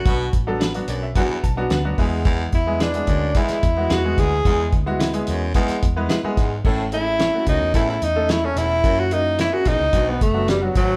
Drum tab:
CC |----------------|----------------|----------------|x---------------|
HH |x-x-xxx-x-x-x-o-|x-x-xxx-xxx-x-x-|x-x-xxx-xxx-x-x-|--x-x-x-x-x-x-x-|
SD |----o-------o---|----o----o--o---|----o----o--o-o-|----o-------o-o-|
BD |o-o-----o-o---o-|o-o---o-o-o---o-|o-o-----o-o---o-|o-----o-o-------|

CC |----------------|
HH |x-x-x-x-x-x-x-x-|
SD |----o-------o---|
BD |o-----o-o-o---o-|